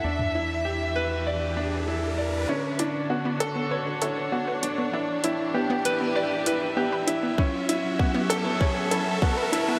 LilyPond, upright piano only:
\new Staff \with { instrumentName = "Upright piano" } { \time 4/4 \key e \dorian \tempo 4 = 98 d'8 e'8 g'8 b'8 d''8 d'8 e'8 d''8 | cis'8 d'8 fis'8 a'8 cis''8 a'8 fis'8 d'8 | d'8 e'8 g'8 b'8 d''8 b'8 g'8 e'8 | cis'8 e'8 fis'8 a'8 cis''8 a'8 fis'8 e'8 | }